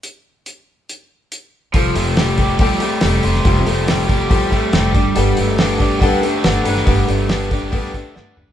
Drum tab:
HH |x---x---x---x---|o-o-o-o-o-o-o-o-|o-o-o-o-o-o-o-o-|o-o-o-o-o-o-o-o-|
SD |----------------|----o-------o--o|----o-------o---|----o-------o--o|
T2 |----------------|----------------|----------------|----------------|
FT |----------------|----------------|----------------|----------------|
BD |----------------|o-----o-o-------|o-----o-o-o---o-|------o-o-------|

HH |o-o-o-o-o-o-----|
SD |----o-------o---|
T2 |--------------o-|
FT |---------------o|
BD |o-----o-o-o-----|